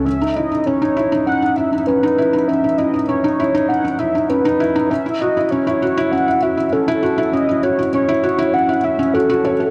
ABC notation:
X:1
M:4/4
L:1/16
Q:1/4=99
K:Alyd
V:1 name="Soft synth lead"
e2 d2 c4 f2 e2 B4 | e2 d2 c4 f2 e2 B4 | e2 d2 c4 f2 e2 A4 | d2 c2 c4 f2 e2 A4 |]
V:2 name="Felt piano"
C D E D C D E D C D E D C D E D | C D E D C D E D C D E D C D E D | C E F E C E F E C E F E C E F E | C E F E C E F E C E C C F F c A |]